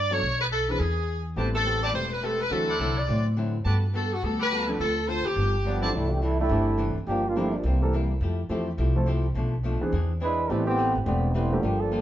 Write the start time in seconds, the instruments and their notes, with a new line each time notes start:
Already playing: upright bass G2, saxophone section D5
0.11 grand piano F#3 B3 D4 A4, saxophone section C#5
0.22 upright bass B1
0.41 saxophone section B4
0.52 saxophone section A4
0.68 grand piano E3 C4 D4 G#4, saxophone section B4
0.79 upright bass E2, saxophone section G#4
1.36 upright bass A1, grand piano G3 B3 C4 A4, hollow-body jazz guitar A3 C4 G4 B4, trumpet section G4 B4 C5 A5
1.55 saxophone section A4
1.65 hollow-body jazz guitar A3 C4 G4 B4
1.82 trumpet section G4 B4 C5 A5, saxophone section D5
1.93 upright bass E1, hollow-body jazz guitar A3 C4 G4 B4, saxophone section C5
2.12 saxophone section B4
2.22 hollow-body jazz guitar A3 C4 G4 B4, saxophone section A4
2.41 saxophone section B4
2.50 upright bass D2, hollow-body jazz guitar D3 F#3 C4 E4, grand piano E3 C4 D4 F#4, saxophone section A4
2.68 trumpet section E4 C5 D5 F#5
2.79 upright bass C2, hollow-body jazz guitar D3 F#3 C4 E4, saxophone section A4
2.99 saxophone section D5
3.08 upright bass A2, hollow-body jazz guitar D3 F#3 C4 E4
3.37 hollow-body jazz guitar D3 F#3 C4 E4
3.64 upright bass G2, hollow-body jazz guitar G3 B3 F#4 A4, trumpet section G4 B4 F#5 A5
3.94 hollow-body jazz guitar G3 B3 F#4 A4, saxophone section A4
4.14 saxophone section F#4
4.22 upright bass D2, hollow-body jazz guitar G3 B3 F#4 A4, saxophone section A4
4.40 trumpet section G4 B4 F#5 B5, saxophone section B4
4.51 hollow-body jazz guitar G3 B3 F#4 A4
4.67 grand piano F3 C4 D4 A4
4.79 upright bass D2, hollow-body jazz guitar D3 C4 F4 A4, saxophone section A4
5.08 hollow-body jazz guitar D3 C4 F4 A4, saxophone section C5
5.26 saxophone section G4, muted upright bass stroke
5.36 upright bass G1, hollow-body jazz guitar G2 F3 B3 D4
5.65 hollow-body jazz guitar G2 F3 B3 D4, trombone section F3 G3 B3 D4
5.82 grand piano E3 C4 D4 A4, trumpet section E4 C5 D5 A5
5.93 upright bass C2, hollow-body jazz guitar C3 E3 A3 D4, trombone section G3 A3 D4 E4
6.11 trombone section E3 A3 D4 G4
6.22 hollow-body jazz guitar C3 E3 A3 D4, trombone section G3 A3 D4 E4
6.40 trombone section G3 A3 D4 E4
6.49 upright bass G1, hollow-body jazz guitar C3 E3 A3 D4, grand piano E3 A3 C4 D4 G4
6.78 hollow-body jazz guitar C3 E3 A3 D4
6.96 muted upright bass stroke
7.07 upright bass G1, hollow-body jazz guitar G2 F3 A#3 D4, trombone section F3 A#3 D4 G4
7.27 trombone section G3 A#3 D4 F4
7.35 hollow-body jazz guitar G2 F3 A#3 D4, grand piano F3 G3 A#3 D4 G4, trombone section F3 A3 C4 E4
7.55 trombone section F3 G3 A#3 D4
7.63 upright bass C2, hollow-body jazz guitar C3 G3 A#3 E4, trombone section E3 G3 A#3 C4
7.81 grand piano E3 G3 A#3 C4 A4
7.93 hollow-body jazz guitar C3 G3 A#3 E4
8.21 upright bass F2, hollow-body jazz guitar F3 A3 E4 G4
8.49 upright bass E2, grand piano F3 A3 C4 E4 G4, hollow-body jazz guitar F3 A3 E4 G4
8.78 upright bass C2, hollow-body jazz guitar F3 A3 E4 G4
8.96 grand piano F3 A3 C4 E4 A4
9.06 hollow-body jazz guitar F3 A3 E4 G4
9.34 upright bass B1, hollow-body jazz guitar B2 F3 A3 D4
9.63 hollow-body jazz guitar B2 F3 A3 D4
9.81 grand piano E3 B3 C4 D4 G#4, muted upright bass stroke
9.92 upright bass E2, hollow-body jazz guitar E3 C4 D4 G#4
10.20 hollow-body jazz guitar E3 C4 D4 G#4, trombone section G#3 D4 E4 B4
10.49 upright bass A1, grand piano E3 A3 B3 C4 G4, trombone section G3 C4 E4 A4, hollow-body jazz guitar A3 C4 G4 B4
10.67 trombone section E3 B3 C4 G4
10.78 hollow-body jazz guitar A3 C4 G4 B4
10.95 upright bass G1
11.06 upright bass E1, trombone section G3 B3 C4 D4, hollow-body jazz guitar A3 C4 G4 B4
11.34 trombone section G3 B3 C4 E4, hollow-body jazz guitar A3 C4 G4 B4
11.52 grand piano F3 A3 A#3 D4 G4
11.63 upright bass G1, trombone section F3 A#3 D4 G4, hollow-body jazz guitar G3 A#3 F4 A4
11.80 trombone section F3 A#3 D4 A4
11.91 hollow-body jazz guitar G3 A#3 F4 A4